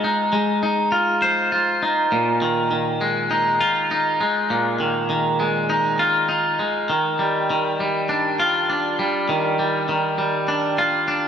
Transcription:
Already playing: G#3 F4 C5
0.04 D#4
0.33 G#3
0.63 D#4
0.92 F4
1.22 C5
1.52 F4
1.83 D#4
2.12 A#2
2.42 D#3
2.71 D#3
3.01 G#3
3.31 D#4
3.61 F4
3.91 D#4
4.21 G#3
4.50 A#2
4.80 D#3
5.10 D#3
5.40 G#3
5.70 D#4
5.99 F4
6.29 D#4
6.59 G#3
6.90 D#3
7.19 G3
7.50 D#3
7.80 G3
8.09 D4
8.40 F4
8.70 D4
8.99 G3
9.29 D#3
9.59 G3
9.89 D#3
10.18 G3
10.48 D4
10.78 F4
11.08 D4

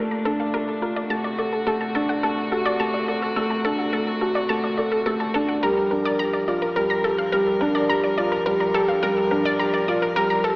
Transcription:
Already playing: A#2 A3 D4 F4 A4
0.11 A#5
0.25 D4 A4
0.40 F5
0.54 A3 A#4
0.82 F4 A#4
0.96 D5
1.09 D2 C3 A3 F#4 A5
1.24 D5
1.38 A4 D5
1.53 A4
1.67 A3 A4
1.81 A5
1.95 D4 A4
2.09 F#5
2.23 A3 A4
2.52 F#4 A4
2.65 D5
2.80 A3 A5
2.94 D5
3.08 A4 D5
3.22 A4
3.36 A3 A4
3.50 A5
3.65 D4 A4
3.79 F#5
3.93 A3 A4
4.21 F#4 A4
4.35 D5
4.49 A3 A5
4.64 D5
4.78 A4 D5
4.92 A4
5.06 A3 A4
5.20 A5
5.34 D4 A4
5.49 F#5
5.63 G2 F3 G3 A#4
5.91 D4 A#4
6.05 D5
6.19 G4 A#5
6.33 D5
6.48 F4 D5
6.62 A#4
6.76 G3 A#4
6.90 A#5
7.04 G4 A4
7.18 F5
7.32 G3 A#4
7.61 D4 A#4
7.75 D5
7.89 G3 A#5
8.03 D5
8.18 F4 D5
8.32 A#4
8.46 G3 A#4
8.60 A#5
8.74 G4 A4
8.88 F5
9.03 G3 A#4
9.31 D4 A#4
9.45 D5
9.59 G4 A#5
9.74 D5
9.88 F4 D5
10.02 A#4
10.16 G3 A#4
10.30 A#5
10.44 G4 A4

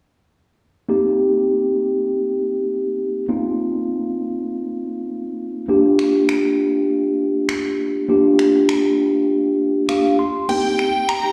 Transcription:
0.89 A#3 C4 D#4 G4
3.28 A#3 C4 D#4 F4
5.68 A#3 D4 F4 G4
5.99 finger snap
6.29 finger snap
7.49 finger snap
8.08 A#3 D4 F4 G4
8.39 finger snap
8.69 finger snap
9.89 A#3 D4 F4 G4 F5, finger snap
10.19 C6
10.49 A#3 C4 D#4 G4 G5, crash
10.79 finger snap
11.09 A#5, finger snap
11.24 D#4 G4

